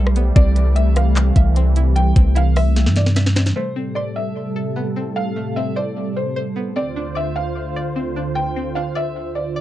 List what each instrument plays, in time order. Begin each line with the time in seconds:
Already playing: 808-style bass B1, analog synth pad G3 A3 G4, synth pluck A3 E4 A4 B5, felt piano C5
0.07 cross-stick
0.16 synth pluck B3, closed hi-hat
0.36 808-style bass C2, analog synth pad C3 E3, synth pluck C4, felt piano D5, kick, closed hi-hat
0.56 synth pluck E3, closed hi-hat
0.76 felt piano E5, synth pluck E6, closed hi-hat
0.96 felt piano F5, cross-stick, closed hi-hat
1.16 clap, closed hi-hat
1.36 808-style bass C2, synth pluck E5, kick, closed hi-hat
1.56 synth pluck C4, closed hi-hat
1.76 synth pluck E4, closed hi-hat
1.96 felt piano G5, closed hi-hat
2.16 808-style bass C2, synth pluck C4, kick, closed hi-hat
2.35 synth pluck E4, felt piano F5, closed hi-hat
2.56 synth pluck E5, felt piano E5, cross-stick, open hi-hat
2.76 snare, closed hi-hat
2.86 808-style bass G2, snare
2.96 felt piano D5, snare, closed hi-hat
3.06 snare
3.16 synth pluck E5, snare, closed hi-hat
3.26 snare
3.36 synth pluck C4, snare, closed hi-hat
3.46 snare, closed hi-hat
3.56 analog synth pad A2 C3 G3 A4, synth pluck A3, felt piano C5
3.76 synth pluck C4
3.95 felt piano D5, synth pluck C6
4.16 felt piano E5
4.56 synth pluck A4
4.76 synth pluck B3
4.96 synth pluck C4
5.16 felt piano F5
5.36 synth pluck A3
5.56 synth pluck C4, felt piano E5
5.76 synth pluck C5, felt piano D5
6.16 felt piano C5
6.36 synth pluck C5
6.56 synth pluck B3
6.76 analog synth pad D2 D3 F4 C5, synth pluck C4, felt piano D5
6.96 synth pluck D4
7.15 synth pluck D5, felt piano E5
7.36 felt piano F5
7.76 synth pluck D5
7.96 synth pluck C4
8.16 synth pluck D4
8.35 felt piano G5
8.56 synth pluck C4
8.75 synth pluck D4, felt piano F5
8.95 synth pluck D5, felt piano E5
9.35 felt piano D5
9.56 synth pluck D5